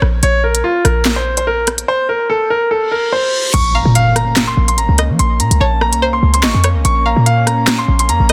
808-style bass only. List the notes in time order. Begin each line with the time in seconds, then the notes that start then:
0.02 A#1
0.23 A#1
0.85 A#1
3.54 A#1
3.85 A#2
4.57 A#1
4.78 A1
4.89 C#2
5.09 F3
5.19 A#1
5.40 A#2
5.51 C#2
5.61 A#1
5.92 C2
6.23 C#2
6.43 A1
6.54 F2
6.75 C#2
6.85 A#1
7.16 A#2
7.88 A#1
8.09 F2
8.20 A#1